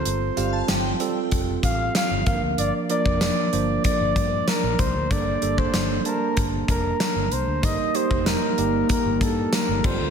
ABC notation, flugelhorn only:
X:1
M:4/4
L:1/16
Q:1/4=95
K:Eblyd
V:1 name="Flugelhorn"
c6 z4 f2 f2 f2 | d2 d6 d4 B2 c2 | d3 c3 B2 z2 B4 c2 | e2 c2 B4 B2 A2 B2 c2 |]